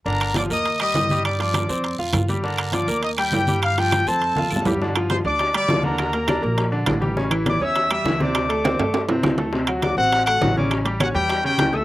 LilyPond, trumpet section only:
\new Staff \with { instrumentName = "Trumpet section" } { \time 4/4 \key g \minor \tempo 4 = 203 <bes' bes''>4 <d'' d'''>8 <ees'' ees'''>4 <ees'' ees'''>4. | <d'' d'''>8 <d'' d'''>2 r4. | <bes' bes''>4 <d'' d'''>4 <ees'' ees'''>8 <g' g''>4. | f''8 <g' g''>4 <a' a''>2 r8 |
r4 <c'' c'''>8 <d'' d'''>4 <d'' d'''>4 <bes' bes''>8~ | <bes' bes''>2~ <bes' bes''>8 r4. | r4 <d'' d'''>8 <e'' e'''>4 <e'' e'''>4 <d'' d'''>8~ | <d'' d'''>2~ <d'' d'''>8 r4. |
r4 <d'' d'''>8 <fis' fis''>4 <fis' fis''>4 <d'' d'''>8 | r4 <fis' fis''>8 <g' g''>4 <g' g''>4 <e'' e'''>8 | }